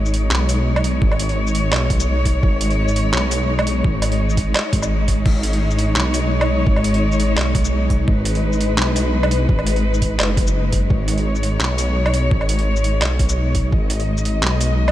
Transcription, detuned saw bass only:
Already playing: G#1
0.31 B1
1.02 G#1
1.72 B1
2.43 G#1
3.14 B1
3.84 G#1
4.73 G#1
5.26 G#1
5.96 B1
6.67 G#1
7.37 B1
8.08 G#1
8.78 B1
9.49 G#1
10.20 F#1
10.90 G#1
11.61 B1
12.31 G#1
13.02 B1
13.73 G#1
14.43 B1

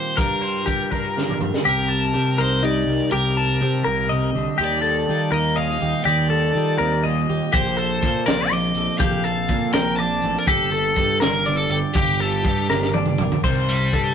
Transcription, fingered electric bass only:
0.18 G2
0.67 G2
1.66 C2
2.15 C3
2.40 C2
2.87 C2
3.12 C2
3.61 C3
3.86 C2
4.36 C2
4.59 D#2
5.09 D#3
5.32 D#2
5.82 D#2
6.05 D#2
6.55 D#3
6.80 D#2
7.29 D#2
7.53 A#1
8.03 A#2
8.27 A#1
8.76 A#1
9.00 A#1
9.49 A#2
9.74 A#1
10.24 A1
10.47 G1
10.96 G2
11.22 G1
11.70 G1
11.95 G1
12.45 G2
12.70 G1
13.19 B1
13.44 C2
13.93 G2

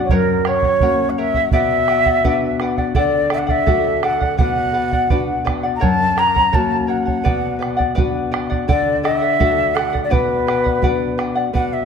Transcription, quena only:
0.04 C#5
0.13 A#4
0.48 C#5
1.10 F#5
1.19 E5
1.52 E5
2.98 D5
3.33 E5
3.38 F#5
3.47 E5 F#5
4.04 F#5
4.40 F#5
5.76 A#5
5.82 A5
6.19 A#5
6.54 A5
6.89 F#5
8.69 D5
9.03 D#5
9.16 E5
9.75 F#5
10.04 D5
10.12 B4
11.54 F#5
11.73 E5

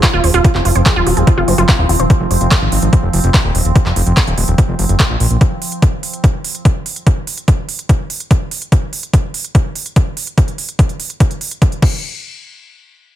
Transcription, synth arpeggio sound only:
0.03 F4
0.13 F4
0.24 C5
0.34 F4
0.44 F4
0.55 F4
0.65 F4
0.75 C5
0.86 G#4
0.96 F4
1.07 F#4
1.17 G#4
1.27 F4
1.38 F4
1.48 C5
1.58 F4
1.69 F4
1.79 F4
1.89 F4
2.00 C5

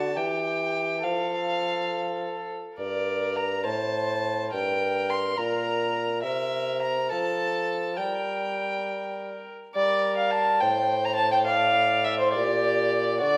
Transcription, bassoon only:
Already playing: D3
0.17 E3
1.05 F3
2.79 G2
3.66 A2
4.53 G2
5.38 A#2
6.24 C3
7.12 F3
7.98 G3
9.76 G3
10.62 A2
12.35 A#2
13.22 D3

